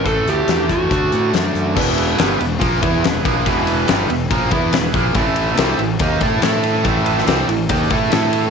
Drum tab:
CC |----------------|x---------------|----------------|----------------|
RD |----------------|--x-x-x-x-x-x-x-|x-x-x-x-x-x-x-x-|x-x-x-x-x-x-x-x-|
HH |x-x-x-x-x-x-x-x-|----------------|----------------|----------------|
SD |----o-------o---|----o-------o---|----o-------o---|----o-------o---|
BD |o-----o-o-------|o-------o-o---o-|o-------o-o---o-|o-------o-o-----|

CC |----------------|
RD |x-x-x-x-x-x-x-x-|
HH |----------------|
SD |---oo-------o---|
BD |o-------o-o-----|